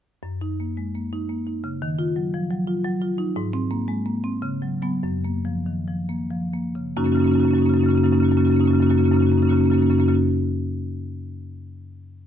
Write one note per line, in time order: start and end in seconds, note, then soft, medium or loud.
0.23 1.77 F#2 medium
0.41 0.70 D#4 medium
0.60 0.88 A#3 soft
0.77 0.95 G#3 soft
0.95 1.23 A#3 soft
1.13 1.40 D#4 medium
1.29 1.57 A#3 medium
1.47 1.75 D#4 soft
1.64 1.81 C#3 medium
1.82 3.32 D#3 medium
1.99 2.26 F4 medium
2.16 2.44 F#3 medium
2.34 2.51 F3 medium
2.51 2.78 F#3 medium
2.67 2.95 F4 medium
2.84 3.12 F#3 medium
3.02 3.29 F4 medium
3.18 3.36 D#4 medium
3.36 4.40 G#2 medium
3.53 3.81 C4 medium
3.71 3.99 A#3 medium
3.88 4.06 G#3 medium
4.06 4.35 A#3 medium
4.24 4.43 C4 medium
4.42 5.02 C#3 medium
4.62 4.81 F#3 medium
4.82 5.01 F#3 medium
4.82 5.01 B3 medium
5.03 6.93 F#2 medium
5.24 5.59 A#3 medium
5.45 5.79 F3 medium
5.66 5.88 D#3 soft
5.87 6.22 F3 soft
6.09 6.44 A#3 medium
6.31 6.67 F3 soft
6.53 6.89 A#3 soft
6.75 6.96 C#3 soft
6.97 7.07 F#2 medium
6.97 7.06 C#3 medium
6.97 7.06 A#3 medium
6.97 7.04 C#4 medium
6.97 7.05 D#4 medium
6.97 7.04 F#4 medium
7.04 7.17 F#2 medium
7.04 7.15 C#3 medium
7.04 7.16 A#3 medium
7.04 7.12 C#4 soft
7.04 7.13 D#4 soft
7.04 7.12 F#4 medium
7.12 7.23 C#3 medium
7.12 7.24 A#3 medium
7.12 7.20 C#4 medium
7.12 7.22 D#4 soft
7.12 7.19 F#4 medium
7.17 7.26 F#2 medium
7.17 7.28 C#4 medium
7.17 7.27 F#4 medium
7.22 7.31 C#3 medium
7.22 7.32 A#3 medium
7.22 7.30 D#4 soft
7.26 7.36 F#2 medium
7.26 7.35 C#4 medium
7.26 7.37 D#4 medium
7.26 7.34 F#4 medium
7.31 7.41 C#3 medium
7.31 7.40 A#3 medium
7.31 7.43 C#4 medium
7.31 7.40 F#4 medium
7.36 7.45 F#2 medium
7.36 7.45 D#4 soft
7.40 7.51 C#3 medium
7.40 7.48 A#3 medium
7.40 7.51 C#4 medium
7.40 7.47 F#4 medium
7.45 7.54 F#2 medium
7.45 7.57 A#3 medium
7.45 7.53 D#4 soft
7.45 7.55 F#4 soft
7.51 7.63 F#2 medium
7.51 7.60 C#3 medium
7.51 7.58 C#4 medium
7.51 7.62 D#4 soft
7.51 7.62 F#4 medium
7.57 7.70 C#3 medium
7.57 7.66 A#3 medium
7.57 7.66 C#4 medium
7.62 7.74 F#2 medium
7.62 7.74 A#3 medium
7.62 7.71 D#4 soft
7.62 7.69 F#4 medium
7.66 7.77 C#3 medium
7.66 7.74 C#4 soft
7.66 7.77 F#4 medium
7.71 7.84 F#2 medium
7.71 7.83 A#3 medium
7.71 7.81 C#4 medium
7.71 7.80 D#4 soft
7.77 7.86 C#3 medium
7.77 7.88 D#4 soft
7.77 7.84 F#4 medium
7.81 7.93 F#2 medium
7.81 7.90 A#3 medium
7.81 7.89 C#4 medium
7.81 7.91 F#4 medium
7.86 7.95 C#3 medium
7.86 7.98 A#3 medium
7.86 7.98 C#4 medium
7.86 7.96 D#4 soft
7.91 8.04 F#2 medium
7.91 7.98 F#4 soft
7.95 8.03 C#3 medium
7.95 8.06 A#3 medium
7.95 8.06 C#4 medium
7.95 8.04 D#4 medium
7.95 8.05 F#4 medium
8.03 8.13 F#2 medium
8.03 8.12 C#3 medium
8.03 8.15 A#3 medium
8.03 8.13 C#4 medium
8.03 8.13 D#4 soft
8.03 8.12 F#4 medium
8.12 8.22 F#2 medium
8.12 8.20 C#3 medium
8.12 8.23 A#3 medium
8.12 8.20 C#4 soft
8.12 8.21 D#4 medium
8.12 8.18 F#4 medium
8.18 8.29 C#3 medium
8.18 8.28 C#4 medium
8.18 8.30 D#4 soft
8.18 8.25 F#4 medium
8.22 8.32 F#2 medium
8.22 8.31 A#3 medium
8.22 8.31 F#4 medium
8.28 8.41 F#2 medium
8.28 8.38 C#3 medium
8.28 8.39 A#3 medium
8.28 8.37 C#4 soft
8.28 8.37 D#4 soft
8.28 8.38 F#4 medium
8.37 8.50 F#2 medium
8.37 8.47 C#3 medium
8.37 8.48 A#3 medium
8.37 8.45 C#4 medium
8.37 8.46 D#4 soft
8.37 8.45 F#4 medium
8.45 8.55 C#3 medium
8.45 8.56 A#3 medium
8.45 8.53 C#4 soft
8.45 8.54 D#4 soft
8.45 8.52 F#4 medium
8.50 8.60 F#2 medium
8.50 8.59 C#4 medium
8.50 8.61 D#4 soft
8.50 8.60 F#4 medium
8.55 8.64 C#3 medium
8.55 8.65 A#3 medium
8.59 8.71 F#2 medium
8.59 8.67 C#4 medium
8.59 8.70 D#4 medium
8.59 8.67 F#4 medium
8.64 8.73 C#3 medium
8.64 8.75 A#3 medium
8.64 8.75 C#4 medium
8.64 8.75 F#4 medium
8.70 8.80 F#2 medium
8.70 8.82 C#3 medium
8.70 8.79 D#4 soft
8.75 8.82 A#3 medium
8.75 8.83 C#4 soft
8.75 8.87 D#4 soft
8.75 8.82 F#4 medium
8.80 8.91 F#2 medium
8.80 8.90 C#3 soft
8.80 8.91 A#3 medium
8.80 8.90 C#4 medium
8.80 8.90 F#4 medium
8.87 8.99 C#3 medium
8.87 8.98 C#4 soft
8.87 8.95 D#4 soft
8.87 8.97 F#4 medium
8.91 9.01 F#2 medium
8.91 8.99 A#3 medium
8.95 9.06 A#3 medium
8.95 9.05 C#4 medium
8.95 9.03 D#4 soft
8.95 9.04 F#4 medium
8.99 9.12 F#2 medium
8.99 9.08 C#3 medium
9.03 9.14 A#3 medium
9.03 9.13 C#4 medium
9.03 9.12 D#4 soft
9.03 9.12 F#4 medium
9.08 9.21 F#2 medium
9.08 9.16 C#3 medium
9.12 9.23 A#3 medium
9.12 9.22 C#4 medium
9.12 9.20 D#4 soft
9.12 9.19 F#4 medium
9.16 9.25 C#3 medium
9.16 9.29 D#4 soft
9.16 9.27 F#4 medium
9.21 9.32 F#2 medium
9.21 9.34 C#3 medium
9.21 9.31 A#3 medium
9.21 9.30 C#4 soft
9.27 9.38 C#4 medium
9.27 9.37 D#4 medium
9.27 9.34 F#4 medium
9.31 9.42 F#2 medium
9.31 9.43 C#3 soft
9.31 9.40 A#3 medium
9.31 9.42 F#4 soft
9.37 9.49 A#3 medium
9.37 9.45 C#4 soft
9.37 9.47 D#4 soft
9.42 9.53 F#2 medium
9.42 9.51 C#3 medium
9.42 9.52 C#4 medium
9.42 9.50 F#4 medium
9.47 9.61 C#3 medium
9.47 9.57 A#3 medium
9.47 9.56 D#4 soft
9.47 9.57 F#4 medium
9.52 9.61 F#2 medium
9.52 9.60 C#4 medium
9.52 9.64 D#4 soft
9.57 9.66 A#3 medium
9.57 9.67 C#4 medium
9.57 9.64 F#4 medium
9.61 9.71 F#2 medium
9.61 9.70 C#3 medium
9.61 9.70 D#4 soft
9.61 9.72 F#4 medium
9.66 9.73 A#3 medium
9.66 9.75 C#4 soft
9.70 9.81 F#2 medium
9.70 9.80 C#3 medium
9.70 9.83 A#3 medium
9.70 9.78 D#4 soft
9.70 9.79 F#4 medium
9.75 9.83 C#4 medium
9.75 9.86 D#4 soft
9.79 9.90 F#2 medium
9.79 9.90 C#3 medium
9.79 9.91 A#3 medium
9.79 9.90 C#4 medium
9.79 9.87 F#4 soft
9.86 9.99 F#2 medium
9.86 9.99 C#3 medium
9.86 9.95 D#4 soft
9.86 9.93 F#4 medium
9.90 10.00 A#3 medium
9.90 9.98 C#4 medium
9.90 10.01 F#4 medium
9.95 10.06 C#4 soft
9.95 10.04 D#4 soft
9.99 10.09 F#2 medium
9.99 10.08 C#3 medium
9.99 10.09 A#3 medium
9.99 10.08 F#4 medium
10.04 10.14 C#4 medium
10.04 10.12 D#4 soft
10.08 10.19 F#2 medium
10.08 10.19 C#3 medium
10.08 10.19 A#3 medium
10.08 10.15 F#4 soft
10.12 10.19 C#4 soft
10.12 10.19 D#4 soft
10.12 10.19 F#4 medium